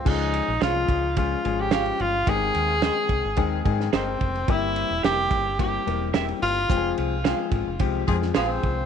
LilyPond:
<<
  \new Staff \with { instrumentName = "Clean electric guitar" } { \time 4/4 \key des \lydian \tempo 4 = 108 r4 <aes' des'' f''>8 r4. <aes' des'' f''>8 r8 | r4 <aes' c'' ees''>8 r4. <aes' c'' ees''>8 r8 | r4 <g' bes' e''>8 r4. <g' bes' e''>8 r8 | r4 <aes' c'' f''>8 r4. <aes' c'' f''>8 r8 | }
  \new Staff \with { instrumentName = "Tenor saxophone" } { \time 4/4 \key des \lydian ees'4 f'4 f'8. g'8. f'8 | aes'2~ aes'8 r8 c'4 | e'4 g'4 g'4 r8 f'8~ | f'8 r2 r8 c'4 | }
  \new Staff \with { instrumentName = "Grand piano" } { \time 4/4 \key des \lydian <f aes des' f' aes'>8. r16 <f aes des' ees' f' aes'>8. r16 <f aes des' f' aes'>8 <f aes des' f' aes'>8 <f aes des' f' g'>8. r16 | <ees aes ces' c' ees' aes'>8. r16 <ees aes c' ees' aes'>8. r16 <ees aes c' ees' aes'>8 <ees aes c' ees' aes'>8 <ees aes c' ees' bes'>8. r16 | <g bes c' e' g'>8. r16 <g bes c' e' g'>8. r16 <g bes c' e' g'>8 <g bes c' e' bes'>8 <g bes c' ees' e' g'>8. r16 | <f aes c' f' g' aes'>8. r16 <f aes c' f' aes'>8. r16 <f aes c' f' g'>8 <f aes c' f' aes'>8 <f aes c' f' g' aes'>8. r16 | }
  \new Staff \with { instrumentName = "Horn section" } { \time 4/4 \key des \lydian r1 | r1 | r1 | r2 r8 <f c' aes'>16 r16 <f c' aes'>8. r16 | }
  \new Staff \with { instrumentName = "Fingered electric bass" } { \clef bass \time 4/4 \key des \lydian des,8. bes,,16 c,8 des,4 aes,,4 g,,8 | aes,,8 ees,8. r16 c,16 aes,,16 ees,8 aes,8 g,,8 f,,8 | g,,8. e,,16 f,,8 g,,4 e,,4 g,,8 | f,,8 c,8. r16 aes,,16 f,,16 c,8 f,8 bes,,8 c,8 | }
  \new DrumStaff \with { instrumentName = "Drums" } \drummode { \time 4/4 <cymc bd>8 cymr8 <cymr sn>8 <bd cymr>8 <bd cymr>8 cymr8 <cymr sn>16 cymr16 cymr8 | <bd cymr>8 cymr8 <cymr sn>8 <bd cymr>8 <bd cymr>8 <bd cymr>16 sn16 <cymr sn>8 <bd cymr>16 cymr16 | <bd cymr>8 cymr8 <cymr sn>8 <bd cymr>8 <bd cymr>8 cymr8 <cymr sn>16 cymr16 <hho cymr>8 | <hhp bd cymr>8 cymr8 <cymr sn>8 <bd cymr>8 <bd cymr>8 <bd cymr>16 sn16 <cymr sn>8 <bd cymr>8 | }
>>